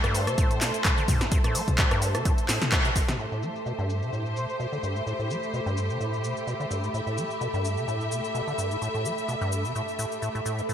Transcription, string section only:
Already playing: A3 A4 C5
3.19 A3 G4 C5
6.94 E5
10.69 A4 C5

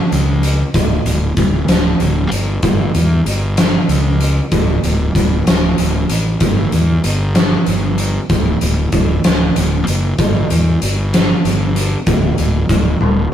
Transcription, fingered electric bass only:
0.12 C#2
0.74 D1
1.05 D1
1.37 D1
1.68 D1
2.00 D1
2.32 G1
2.63 G1
2.95 E2
3.26 G1
3.88 C#2
4.52 D1
4.84 D1
5.15 D1
5.47 D1
5.79 D1
6.10 A1
6.41 G1
6.73 E2
7.05 G1
7.67 G1
8.30 D1
8.61 D1
8.92 D1
9.24 D1
9.56 D1
9.88 F#1
10.19 G1
10.51 E2
10.83 G1
11.45 G1
12.07 D1
12.38 D1
12.70 D1
13.00 D1

